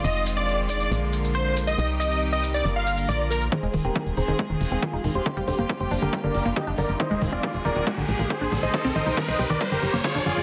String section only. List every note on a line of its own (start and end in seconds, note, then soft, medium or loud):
0.00 1.74 F3 medium
0.00 1.74 F4 medium
0.04 0.90 D#3 medium
0.04 1.76 G#3 medium
0.04 0.90 C4 medium
0.91 1.77 D3 medium
0.91 1.77 A#3 medium
1.78 2.64 C3 medium
1.78 2.64 D#3 medium
1.78 3.07 G3 medium
1.78 2.64 D#4 medium
1.78 2.64 G4 medium
2.65 3.51 D3 medium
2.65 3.51 A#3 medium
2.65 3.51 F4 medium
2.65 3.51 A#4 medium
3.09 3.52 F3 medium
3.52 5.24 D#3 medium
3.52 5.24 G#3 medium
3.52 5.24 C4 medium
3.52 8.70 F4 medium
3.52 5.24 G#4 medium
5.26 6.98 D3 medium
5.26 6.98 G3 medium
5.26 6.98 A#3 medium
5.26 6.98 G4 medium
7.00 7.86 D#3 medium
7.00 7.86 G#3 medium
7.00 7.86 C4 medium
7.00 8.72 G#4 medium
7.87 8.73 D3 medium
7.87 8.73 G#3 medium
7.87 8.73 A#3 medium
8.74 9.60 C3 medium
8.74 9.60 D#3 medium
8.74 9.60 G3 medium
8.74 9.60 D#4 medium
8.74 9.60 G4 medium
9.61 10.43 D3 medium
9.61 10.43 F3 medium
9.61 10.43 G3 medium
9.61 10.43 A#3 medium
9.61 10.43 F4 medium